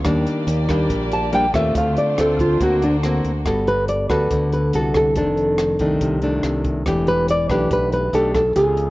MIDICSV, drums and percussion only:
0, 0, Header, 1, 2, 480
1, 0, Start_track
1, 0, Tempo, 425834
1, 54, Time_signature, 4, 2, 24, 8
1, 10032, End_track
2, 0, Start_track
2, 0, Title_t, "Drums"
2, 50, Note_on_c, 9, 37, 62
2, 50, Note_on_c, 9, 42, 40
2, 52, Note_on_c, 9, 36, 59
2, 163, Note_off_c, 9, 37, 0
2, 163, Note_off_c, 9, 42, 0
2, 165, Note_off_c, 9, 36, 0
2, 299, Note_on_c, 9, 42, 25
2, 411, Note_off_c, 9, 42, 0
2, 536, Note_on_c, 9, 42, 41
2, 649, Note_off_c, 9, 42, 0
2, 773, Note_on_c, 9, 36, 49
2, 775, Note_on_c, 9, 37, 56
2, 775, Note_on_c, 9, 42, 24
2, 886, Note_off_c, 9, 36, 0
2, 888, Note_off_c, 9, 37, 0
2, 888, Note_off_c, 9, 42, 0
2, 1014, Note_on_c, 9, 36, 53
2, 1015, Note_on_c, 9, 42, 40
2, 1126, Note_off_c, 9, 36, 0
2, 1128, Note_off_c, 9, 42, 0
2, 1259, Note_on_c, 9, 42, 26
2, 1372, Note_off_c, 9, 42, 0
2, 1495, Note_on_c, 9, 42, 41
2, 1607, Note_off_c, 9, 42, 0
2, 1733, Note_on_c, 9, 36, 51
2, 1735, Note_on_c, 9, 37, 57
2, 1735, Note_on_c, 9, 42, 27
2, 1846, Note_off_c, 9, 36, 0
2, 1848, Note_off_c, 9, 37, 0
2, 1848, Note_off_c, 9, 42, 0
2, 1973, Note_on_c, 9, 36, 57
2, 1976, Note_on_c, 9, 42, 44
2, 2086, Note_off_c, 9, 36, 0
2, 2089, Note_off_c, 9, 42, 0
2, 2218, Note_on_c, 9, 42, 28
2, 2330, Note_off_c, 9, 42, 0
2, 2457, Note_on_c, 9, 37, 56
2, 2457, Note_on_c, 9, 42, 43
2, 2569, Note_off_c, 9, 37, 0
2, 2569, Note_off_c, 9, 42, 0
2, 2695, Note_on_c, 9, 36, 52
2, 2702, Note_on_c, 9, 42, 25
2, 2808, Note_off_c, 9, 36, 0
2, 2815, Note_off_c, 9, 42, 0
2, 2933, Note_on_c, 9, 36, 57
2, 2935, Note_on_c, 9, 42, 41
2, 3046, Note_off_c, 9, 36, 0
2, 3047, Note_off_c, 9, 42, 0
2, 3179, Note_on_c, 9, 42, 27
2, 3292, Note_off_c, 9, 42, 0
2, 3418, Note_on_c, 9, 37, 50
2, 3418, Note_on_c, 9, 42, 38
2, 3531, Note_off_c, 9, 37, 0
2, 3531, Note_off_c, 9, 42, 0
2, 3658, Note_on_c, 9, 42, 27
2, 3771, Note_off_c, 9, 42, 0
2, 3894, Note_on_c, 9, 36, 54
2, 3897, Note_on_c, 9, 37, 53
2, 3897, Note_on_c, 9, 42, 39
2, 4007, Note_off_c, 9, 36, 0
2, 4010, Note_off_c, 9, 37, 0
2, 4010, Note_off_c, 9, 42, 0
2, 4143, Note_on_c, 9, 42, 23
2, 4255, Note_off_c, 9, 42, 0
2, 4377, Note_on_c, 9, 42, 36
2, 4490, Note_off_c, 9, 42, 0
2, 4616, Note_on_c, 9, 36, 45
2, 4617, Note_on_c, 9, 37, 49
2, 4617, Note_on_c, 9, 42, 23
2, 4729, Note_off_c, 9, 36, 0
2, 4730, Note_off_c, 9, 37, 0
2, 4730, Note_off_c, 9, 42, 0
2, 4854, Note_on_c, 9, 42, 36
2, 4856, Note_on_c, 9, 36, 49
2, 4967, Note_off_c, 9, 42, 0
2, 4969, Note_off_c, 9, 36, 0
2, 5101, Note_on_c, 9, 42, 25
2, 5214, Note_off_c, 9, 42, 0
2, 5336, Note_on_c, 9, 42, 37
2, 5449, Note_off_c, 9, 42, 0
2, 5573, Note_on_c, 9, 37, 52
2, 5573, Note_on_c, 9, 42, 27
2, 5576, Note_on_c, 9, 36, 48
2, 5685, Note_off_c, 9, 37, 0
2, 5685, Note_off_c, 9, 42, 0
2, 5688, Note_off_c, 9, 36, 0
2, 5811, Note_on_c, 9, 42, 39
2, 5815, Note_on_c, 9, 36, 50
2, 5924, Note_off_c, 9, 42, 0
2, 5928, Note_off_c, 9, 36, 0
2, 6056, Note_on_c, 9, 42, 24
2, 6169, Note_off_c, 9, 42, 0
2, 6291, Note_on_c, 9, 37, 57
2, 6291, Note_on_c, 9, 42, 41
2, 6404, Note_off_c, 9, 37, 0
2, 6404, Note_off_c, 9, 42, 0
2, 6528, Note_on_c, 9, 42, 25
2, 6534, Note_on_c, 9, 36, 44
2, 6641, Note_off_c, 9, 42, 0
2, 6647, Note_off_c, 9, 36, 0
2, 6775, Note_on_c, 9, 36, 53
2, 6775, Note_on_c, 9, 42, 38
2, 6888, Note_off_c, 9, 36, 0
2, 6888, Note_off_c, 9, 42, 0
2, 7008, Note_on_c, 9, 42, 23
2, 7121, Note_off_c, 9, 42, 0
2, 7250, Note_on_c, 9, 37, 46
2, 7250, Note_on_c, 9, 42, 34
2, 7363, Note_off_c, 9, 37, 0
2, 7363, Note_off_c, 9, 42, 0
2, 7491, Note_on_c, 9, 42, 23
2, 7492, Note_on_c, 9, 36, 52
2, 7603, Note_off_c, 9, 42, 0
2, 7605, Note_off_c, 9, 36, 0
2, 7731, Note_on_c, 9, 36, 55
2, 7732, Note_on_c, 9, 37, 54
2, 7732, Note_on_c, 9, 42, 38
2, 7844, Note_off_c, 9, 36, 0
2, 7844, Note_off_c, 9, 37, 0
2, 7844, Note_off_c, 9, 42, 0
2, 7969, Note_on_c, 9, 42, 22
2, 8082, Note_off_c, 9, 42, 0
2, 8211, Note_on_c, 9, 42, 39
2, 8324, Note_off_c, 9, 42, 0
2, 8449, Note_on_c, 9, 36, 47
2, 8450, Note_on_c, 9, 37, 51
2, 8450, Note_on_c, 9, 42, 23
2, 8562, Note_off_c, 9, 36, 0
2, 8563, Note_off_c, 9, 37, 0
2, 8563, Note_off_c, 9, 42, 0
2, 8688, Note_on_c, 9, 36, 55
2, 8690, Note_on_c, 9, 42, 35
2, 8801, Note_off_c, 9, 36, 0
2, 8803, Note_off_c, 9, 42, 0
2, 8931, Note_on_c, 9, 42, 23
2, 9043, Note_off_c, 9, 42, 0
2, 9170, Note_on_c, 9, 42, 39
2, 9283, Note_off_c, 9, 42, 0
2, 9407, Note_on_c, 9, 36, 52
2, 9407, Note_on_c, 9, 37, 49
2, 9407, Note_on_c, 9, 42, 25
2, 9520, Note_off_c, 9, 36, 0
2, 9520, Note_off_c, 9, 37, 0
2, 9520, Note_off_c, 9, 42, 0
2, 9647, Note_on_c, 9, 42, 40
2, 9648, Note_on_c, 9, 36, 53
2, 9760, Note_off_c, 9, 36, 0
2, 9760, Note_off_c, 9, 42, 0
2, 9887, Note_on_c, 9, 42, 26
2, 10000, Note_off_c, 9, 42, 0
2, 10032, End_track
0, 0, End_of_file